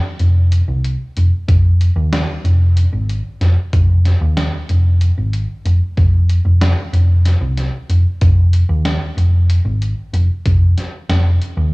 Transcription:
0.20 F1, closed hi-hat
0.52 closed hi-hat
0.68 C2
0.85 closed hi-hat
1.17 F1, closed hi-hat
1.48 F1, kick, closed hi-hat
1.81 closed hi-hat
1.96 D#2
2.13 snare, closed hi-hat
2.44 F1, closed hi-hat
2.77 closed hi-hat
2.93 G#1
3.10 closed hi-hat
3.41 F1, snare, closed hi-hat
3.73 F1, kick, closed hi-hat
4.05 snare, closed hi-hat
4.21 D#2
4.37 snare, closed hi-hat
4.69 F1, closed hi-hat
5.01 closed hi-hat
5.18 G#1
5.33 closed hi-hat
5.65 F1, closed hi-hat
5.97 F1, kick, closed hi-hat
6.29 closed hi-hat
6.45 F1
6.61 snare, closed hi-hat
6.93 F1, closed hi-hat
7.25 snare, closed hi-hat
7.41 C2
7.57 snare, closed hi-hat
7.89 F1, closed hi-hat
8.21 F1, kick, closed hi-hat
8.53 closed hi-hat
8.69 D#2
8.85 snare, closed hi-hat
9.17 F1, closed hi-hat
9.50 closed hi-hat
9.65 G#1
9.82 closed hi-hat
10.13 F1, closed hi-hat
10.46 F1, kick, closed hi-hat
10.78 snare, closed hi-hat
11.09 F1, snare, closed hi-hat
11.42 closed hi-hat
11.57 D#2

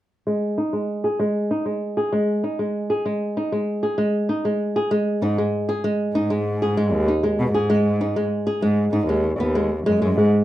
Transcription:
0.27 G#3
0.58 D#4
0.73 G#3
1.04 G#4
1.20 G#3
1.51 D#4
1.66 G#3
1.97 G#4
2.13 G#3
2.44 D#4
2.59 G#3
2.90 G#4
3.06 G#3
3.37 D#4
3.52 G#3
3.83 G#4
3.98 G#3
4.29 D#4
4.45 G#3
4.76 G#4
4.91 G#3
5.22 G#2 D#4
5.38 G#3
5.69 G#4
5.84 G#3
6.15 G#2 D#4
6.30 G#3
6.62 G#4
6.77 G#3
6.93 D#2
7.08 D#4
7.23 G#3
7.39 B2
7.54 G#2 G#4
7.70 G#3
8.01 D#4
8.16 G#3
8.47 G#4
8.62 G#2 G#3
8.92 G#2 D#4
9.08 D#2 G#3
9.39 D#2 B3
9.55 G#3
9.86 F#2 G#3
10.02 F#2 G#3
10.17 G#2 G#3

